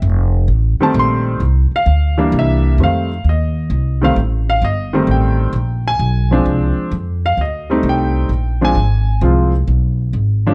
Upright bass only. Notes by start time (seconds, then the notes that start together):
0.02 F1
0.48 A1
0.80 muted upright bass stroke
0.94 A#1
1.40 C2
1.71 muted upright bass stroke
1.86 D2
2.32 C2
2.78 F2
3.24 D#2
3.70 C2
4.16 A1
4.62 G1
5.07 A1
5.53 A#1
5.99 B1
6.46 C2
6.77 muted upright bass stroke
6.92 F2
7.37 D2
7.83 C2
8.29 A#1
8.75 G#1
9.21 C2
9.67 B1
10.13 G#1